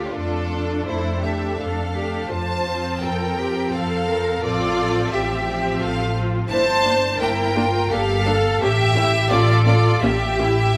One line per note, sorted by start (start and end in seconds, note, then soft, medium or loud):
0.00 0.13 A3 soft
0.00 0.13 D4 soft
0.00 0.15 F4 medium
0.00 0.15 G4 medium
0.00 0.14 D5 medium
0.14 0.79 F2 medium
0.14 0.50 A3 soft
0.14 0.50 D4 soft
0.14 0.86 D4 medium
0.14 0.86 F4 medium
0.14 0.86 A4 medium
0.51 1.21 A3 soft
0.51 1.21 D4 soft
0.86 1.50 F2 medium
0.86 1.23 E4 medium
0.86 1.58 A4 medium
0.86 1.22 C5 medium
1.22 1.93 A3 soft
1.22 1.93 D4 medium
1.22 1.59 G4 medium
1.22 1.59 E5 medium
1.58 2.22 F2 medium
1.58 2.29 A4 medium
1.58 1.94 A4 medium
1.58 2.31 F5 medium
1.95 2.30 A3 soft
1.95 2.30 D4 soft
1.95 2.31 G4 medium
2.30 2.94 F2 medium
2.30 3.02 F4 medium
2.30 3.02 C5 medium
2.30 3.01 A5 loud
2.67 3.37 F3 medium
2.67 3.37 C4 medium
3.02 3.65 F2 medium
3.02 3.38 A4 medium
3.02 3.75 A#4 medium
3.02 3.74 G5 medium
3.38 4.08 F3 medium
3.38 4.08 C4 medium
3.38 3.74 G4 medium
3.74 4.36 F2 medium
3.74 4.08 A4 medium
3.74 4.43 A4 medium
3.74 4.44 F5 medium
4.09 4.43 F3 soft
4.09 4.43 C4 soft
4.09 4.44 A#4 medium
4.44 5.04 A1 medium
4.44 4.76 F3 medium
4.44 4.76 C4 soft
4.44 5.11 F4 medium
4.44 5.12 A4 medium
4.44 5.10 D5 loud
4.77 5.44 F3 medium
4.77 5.44 C4 medium
5.11 5.73 A1 medium
5.11 5.81 G4 medium
5.11 5.81 E5 medium
5.46 6.14 F3 medium
5.46 6.14 C4 medium
5.80 6.42 A1 medium
5.80 6.50 F4 medium
5.80 6.16 A4 medium
5.80 6.15 F5 medium
6.15 6.49 F3 medium
6.15 6.49 C4 soft
6.48 7.13 G1 medium
6.48 6.58 A#3 medium
6.48 6.58 D4 medium
6.48 6.84 E4 medium
6.48 7.17 C5 loud
6.48 7.16 A5 loud
6.85 6.93 A#3 medium
6.85 7.21 D4 medium
6.85 6.93 D4 medium
7.21 7.83 G1 medium
7.21 7.29 A#3 medium
7.21 7.29 D4 medium
7.21 7.56 E4 medium
7.21 7.92 A#4 medium
7.21 7.92 G5 loud
7.56 7.64 A#3 medium
7.56 7.64 D4 medium
7.56 7.92 F4 medium
7.92 8.53 G1 medium
7.92 8.00 A#3 medium
7.92 8.00 D4 medium
7.92 8.27 G4 medium
7.92 8.61 A4 medium
7.92 8.61 F5 loud
8.27 8.36 A#3 medium
8.27 8.35 D4 medium
8.27 8.61 A4 loud
8.61 9.21 A1 medium
8.61 8.70 A#3 medium
8.61 8.70 C#4 medium
8.61 9.28 G4 loud
8.61 8.95 G4 medium
8.61 9.28 E5 loud
8.96 9.04 A#3 medium
8.96 9.04 C#4 medium
8.96 9.30 E4 medium
9.29 9.93 A1 medium
9.29 9.38 A#3 medium
9.29 9.38 C#4 medium
9.29 9.64 F4 medium
9.29 10.01 A4 medium
9.29 9.64 D5 loud
9.65 9.74 A#3 medium
9.65 9.74 C#4 medium
9.65 10.01 F4 medium
9.65 10.01 D5 loud
10.02 10.68 A1 medium
10.02 10.10 A#3 medium
10.02 10.10 C#4 medium
10.02 10.39 G4 medium
10.02 10.77 G4 medium
10.02 10.77 E5 loud
10.39 10.48 A#3 medium
10.39 10.48 C#4 medium
10.39 10.77 E4 medium